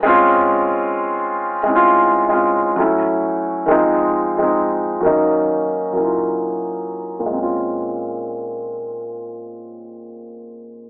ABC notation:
X:1
M:4/4
L:1/16
Q:"Swing 16ths" 1/4=66
K:Bbm
V:1 name="Felt piano"
[A,CDF]6- [A,CDF] [A,CD=EF]3 [A,CDF]2 [G,=A,D_F]4 | [E,F,A,CE]3 [F,A,CE]3 [G,B,DE]4 [G,B,D=EF]6 | [B,,A,CDF]16 |]